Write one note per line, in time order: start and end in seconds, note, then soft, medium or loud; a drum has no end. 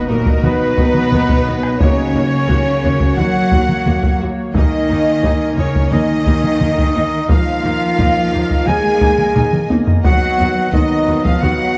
0.00 4.51 F#3 medium
0.00 1.76 D#4 loud
0.00 2.45 D#4 medium
0.00 1.80 F#4 loud
0.00 1.76 D#5 loud
0.00 impact medium
0.08 0.18 D#2 medium
0.08 0.44 A#2 medium
0.08 0.42 A#3 loud
0.08 0.17 D#4 medium
0.08 0.17 F#4 medium
0.08 0.43 A#4 medium
0.08 0.46 A#4 medium
0.26 taiko medium
0.43 0.51 D#2 medium
0.43 1.78 B2 medium
0.43 1.80 B3 loud
0.43 0.51 B3 medium
0.43 0.52 F#4 medium
0.43 1.80 B4 loud
0.43 1.81 B4 loud
0.43 1.79 B4 medium
0.43 taiko mid medium
0.77 0.87 D#2 medium
0.77 0.86 B3 medium
0.77 0.85 F#4 medium
0.77 taiko medium
0.94 taiko mid medium
1.12 1.21 D#2 medium
1.12 1.21 B3 medium
1.12 1.20 F#4 medium
1.12 taiko mid medium
1.29 taiko medium
1.47 1.55 D#2 medium
1.47 1.55 B3 medium
1.47 1.56 F#4 medium
1.63 taiko rim soft
1.79 1.89 D#2 medium
1.79 3.14 C#3 medium
1.79 1.89 A#3 medium
1.79 7.12 A#3 loud
1.79 3.14 C#4 loud
1.79 4.55 F#4 loud
1.79 1.89 F#4 medium
1.79 3.14 C#5 medium
1.79 3.14 C#5 loud
1.79 3.15 C#5 loud
1.79 4.55 C#5 loud
1.79 3.18 C#5 loud
1.79 taiko loud
2.15 2.23 D#2 medium
2.15 2.23 A#3 medium
2.15 2.23 F#4 medium
2.49 2.57 D#2 medium
2.49 2.57 A#3 medium
2.49 7.13 A#3 medium
2.49 2.57 F#4 medium
2.49 taiko medium
2.83 2.92 D#2 medium
2.83 2.91 A#3 medium
2.83 2.91 F#4 medium
3.00 taiko medium
3.17 3.26 D#2 medium
3.17 4.18 F#3 medium
3.17 3.26 A#3 medium
3.17 4.20 F#4 loud
3.17 3.26 F#4 medium
3.17 4.20 F#5 medium
3.17 4.18 F#5 medium
3.17 4.18 F#5 loud
3.17 taiko mid medium
3.52 3.61 D#2 medium
3.52 3.61 A#3 medium
3.52 3.61 F#4 medium
3.52 taiko medium
3.69 taiko mid medium
3.86 3.95 D#2 medium
3.86 3.94 A#3 medium
3.86 3.94 F#4 medium
3.86 taiko mid medium
4.03 taiko medium
4.20 4.29 D#2 medium
4.20 4.28 A#3 medium
4.20 4.28 F#4 medium
4.54 4.63 D#2 medium
4.54 5.54 D#3 medium
4.54 10.02 D#3 medium
4.54 4.63 A#3 medium
4.54 5.53 D#4 loud
4.54 10.03 D#4 loud
4.54 4.63 D#4 medium
4.54 10.05 A#4 medium
4.54 5.54 D#5 medium
4.54 5.54 D#5 loud
4.54 5.54 D#5 medium
4.54 7.12 G#5 loud
4.54 taiko loud
4.89 4.97 D#2 medium
4.89 4.98 A#3 medium
4.89 4.98 D#4 medium
5.23 5.31 D#2 medium
5.23 5.31 A#3 medium
5.23 5.32 D#4 medium
5.23 taiko medium
5.56 5.64 D#2 medium
5.56 5.92 C#3 medium
5.56 5.65 A#3 medium
5.56 5.93 C#4 loud
5.56 5.66 D#4 medium
5.56 5.92 C#5 medium
5.75 taiko medium
5.91 5.99 D#2 medium
5.91 7.30 D#3 medium
5.91 6.00 A#3 medium
5.91 6.00 D#4 medium
5.91 7.30 D#4 loud
5.91 7.26 D#5 loud
5.91 7.30 D#5 loud
5.91 7.27 D#5 loud
5.91 7.30 D#5 loud
5.91 taiko mid medium
6.25 6.33 D#2 medium
6.25 6.34 A#3 medium
6.25 6.34 D#4 medium
6.25 taiko medium
6.44 taiko mid medium
6.60 6.68 D#2 medium
6.60 6.69 A#3 medium
6.60 6.69 D#4 medium
6.60 taiko mid medium
6.78 taiko medium
6.95 7.03 D#2 medium
6.95 7.03 A#3 medium
6.95 7.03 D#4 medium
7.29 7.37 D#2 medium
7.29 8.64 F3 medium
7.29 10.01 A#3 loud
7.29 7.38 A#3 medium
7.29 10.01 A#3 medium
7.29 7.38 D#4 medium
7.29 8.66 F4 loud
7.29 11.78 D#5 loud
7.29 8.65 F5 loud
7.29 taiko loud
7.64 7.72 D#2 medium
7.64 7.72 A#3 medium
7.64 7.72 D#4 medium
7.98 8.07 D#2 medium
7.98 8.06 A#3 medium
7.98 8.06 D#4 medium
7.98 taiko medium
8.32 8.41 D#2 medium
8.32 8.40 A#3 medium
8.32 8.40 D#4 medium
8.50 taiko medium
8.66 8.76 D#2 medium
8.66 9.70 G#3 loud
8.66 8.76 A#3 medium
8.66 8.75 D#4 medium
8.66 9.71 G#4 loud
8.66 9.68 G#5 medium
8.66 9.70 G#5 loud
8.66 9.71 G#5 loud
8.66 9.69 G#5 loud
8.66 taiko mid medium
9.01 9.10 D#2 medium
9.01 9.09 A#3 medium
9.01 9.09 D#4 medium
9.01 taiko medium
9.18 taiko mid medium
9.35 9.44 D#2 medium
9.35 9.43 A#3 medium
9.35 9.43 D#4 medium
9.35 taiko low-mid medium
9.53 taiko mid medium
9.70 9.78 D#2 medium
9.70 9.78 A#3 medium
9.70 9.78 D#4 medium
9.70 taiko high medium
9.87 taiko low loud
10.02 10.13 D#2 medium
10.02 10.70 F#3 loud
10.02 11.78 F#3 medium
10.02 10.12 B3 medium
10.02 11.78 B3 loud
10.02 11.78 B3 medium
10.02 11.78 D#4 loud
10.02 10.68 F#4 loud
10.02 11.78 F#4 loud
10.02 10.12 F#4 medium
10.02 10.69 F#5 loud
10.02 10.70 F#5 loud
10.02 taiko loud
10.39 10.47 D#2 medium
10.39 10.47 B3 medium
10.39 10.47 F#4 medium
10.73 10.81 D#2 medium
10.73 11.26 D#3 medium
10.73 10.81 B3 medium
10.73 11.25 D#4 loud
10.73 10.82 F#4 medium
10.73 11.24 D#5 medium
10.73 11.25 D#5 medium
10.73 11.24 D#5 medium
10.73 11.26 D#5 medium
10.73 taiko medium
11.07 11.15 D#2 medium
11.07 11.15 B3 medium
11.07 11.15 F#4 medium
11.24 11.43 F3 medium
11.24 11.42 F4 loud
11.24 11.42 F5 medium
11.24 11.43 F5 medium
11.24 taiko medium
11.41 11.50 D#2 medium
11.41 11.78 F#3 medium
11.41 11.51 B3 medium
11.41 11.51 F#4 medium
11.41 11.78 F#4 loud
11.41 11.78 F#5 loud
11.41 taiko mid medium